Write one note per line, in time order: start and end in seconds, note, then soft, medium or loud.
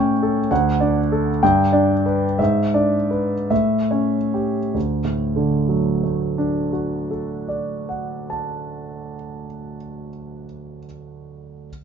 0.00 0.48 A2 soft
0.00 0.40 C#4 soft
0.00 0.40 C#5 soft
0.00 0.12 G5 medium
0.23 0.50 A4 soft
0.51 1.38 D2 medium
0.51 0.98 F#5 medium
0.80 1.29 D4 soft
0.80 1.29 D5 soft
1.12 1.42 A4 soft
1.43 2.37 G2 medium
1.43 1.93 G5 medium
1.73 2.25 D4 soft
1.73 2.25 D5 soft
2.06 2.39 B4 soft
2.39 3.46 G#2 soft
2.39 2.96 E5 medium
2.74 3.34 D4 soft
2.74 3.34 D5 soft
3.11 3.50 B4 soft
3.50 4.71 A2 soft
3.50 4.16 E5 medium
3.91 4.59 C#4 soft
3.91 4.59 C#5 soft
4.34 4.75 G4 soft
4.74 9.15 D2 soft
5.04 9.45 A2 soft
5.36 9.77 D3 soft
5.69 10.09 F#3 soft
6.04 10.44 A3 soft
6.38 10.79 D4 soft
6.73 10.84 F#4 soft
7.11 10.85 A4 soft
7.48 10.85 D5 soft
7.89 10.85 F#5 soft
8.30 10.86 A5 soft